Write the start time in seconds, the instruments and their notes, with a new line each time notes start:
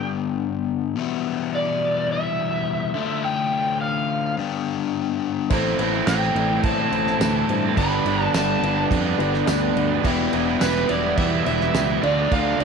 Already playing: overdriven electric guitar G2 D3 G3 B3 D4 G4
0.96 overdriven electric guitar E2 B2 E3 G3 B3 E4
1.55 electric slide guitar D5
2.12 electric slide guitar E5
2.94 overdriven electric guitar D3 A3 D4 F4
3.24 electric slide guitar G5
3.81 electric slide guitar F5
4.37 overdriven electric guitar G2 D3 G3 B3 D4 G4
5.50 fingered electric bass A1, overdriven electric guitar A2 E3 A3 C4 E4 A4, upright piano C4 E4 A4 C5, kick, crash
5.79 fingered electric bass A1, overdriven electric guitar E3 A3 C4 E4, upright piano C4 E4 A4 B4, crash
5.94 overdriven electric guitar A3 C4 E4
6.07 fingered electric bass A1, overdriven electric guitar A2 E3 A3 C4 E4, upright piano C4 E4 B4, electric slide guitar G5, snare, tambourine, crash
6.22 snare
6.35 fingered electric bass A1, overdriven electric guitar E3 A3 C4 E4, upright piano C4 E4 A4 D5, crash
6.50 overdriven electric guitar A3 C4 E4
6.63 fingered electric bass A2, upright piano C4 E4 A4 D5, electric slide guitar A5, kick, crash
6.79 overdriven electric guitar A3 C4 E4
6.92 fingered electric bass A1, overdriven electric guitar E3 A3 C4 E4, upright piano C4 E4 A4 C5, crash
7.07 overdriven electric guitar A3 C4 E4, snare
7.20 fingered electric bass D2, overdriven electric guitar A2 E3 A3 C4 E4, upright piano C4 E4 A4 B4, snare, tambourine, crash
7.35 overdriven electric guitar A3 C4 E4
7.49 fingered electric bass G2, upright piano C4 E4 A4 C5, crash
7.63 overdriven electric guitar A3 C4 E4
7.76 fingered electric bass G1, overdriven electric guitar G2 D3 G3 B3 D4 G4, upright piano D4 G4 B4 D5, electric slide guitar B5, kick, crash
8.05 fingered electric bass G1, overdriven electric guitar D3 G3 B3 D4, upright piano D4 G4 B4 D5, crash
8.19 overdriven electric guitar G3 B3 D4, electric slide guitar A5
8.33 fingered electric bass G1, overdriven electric guitar G2 D3 G3 B3 D4, upright piano D4 G4 B4 E5, electric slide guitar A5, snare, tambourine, crash
8.62 fingered electric bass G1, overdriven electric guitar D3 G3 B3 D4, upright piano D4 G4 B4 F5, crash
8.76 overdriven electric guitar G3 B3 D4
8.91 fingered electric bass F2, upright piano D4 G4 B4 D5, kick, crash
9.04 overdriven electric guitar G3 B3 D4
9.18 fingered electric bass G1, overdriven electric guitar D3 G3 B3 D4, upright piano D4 G4 B4 D5, crash
9.34 overdriven electric guitar G3 B3 D4, snare
9.46 fingered electric bass D2, overdriven electric guitar G2 D3 G3 B3 D4, upright piano D4 G4 B4 D5 G5, snare, tambourine, crash
9.61 overdriven electric guitar G3 B3 D4
9.76 fingered electric bass D2, upright piano D4 G4 B4 D5 B5, crash
9.90 overdriven electric guitar G3 B3 D4
10.03 fingered electric bass E1, overdriven electric guitar E2 B2 E3 G3 B3 E4 G4, upright piano E4 G4 B4 E5, kick, crash
10.32 fingered electric bass E1, overdriven electric guitar E3 G3 B3 E4, upright piano E4 G4 B4 E5, crash
10.46 overdriven electric guitar G3 B3 E4
10.60 fingered electric bass E1, overdriven electric guitar E3 G3 B3 E4, upright piano E4 G4 B4 E5, electric slide guitar B4, snare, tambourine, crash
10.76 snare
10.89 fingered electric bass E1, overdriven electric guitar E3 G3 B3 E4, upright piano E4 G4 B4 E5, electric slide guitar D5, crash
11.04 overdriven electric guitar G3 B3 E4
11.17 fingered electric bass E2, upright piano E4 G4 B4 G5, electric slide guitar E5, kick, crash
11.31 overdriven electric guitar G3 B3 E4
11.45 fingered electric bass E1, overdriven electric guitar E3 G3 B3 E4, upright piano E4 G4 B4 E5, electric slide guitar E5, crash
11.60 overdriven electric guitar G3 B3 E4, snare
11.74 fingered electric bass C#2, overdriven electric guitar E3 G3 B3 E4, upright piano E4 G4 B4 G5, snare, tambourine, crash
11.89 overdriven electric guitar G3 B3 E4
12.02 fingered electric bass D2, overdriven electric guitar D3 A3 D4 F4, upright piano F4 A4 D5 F5, electric slide guitar D5, crash
12.17 overdriven electric guitar A3 D4 F4
12.31 fingered electric bass D2, overdriven electric guitar D3 A3 D4 F4, electric slide guitar F5, kick, crash
12.60 fingered electric bass D2, overdriven electric guitar D3 A3, upright piano F4 F5, electric slide guitar D5, crash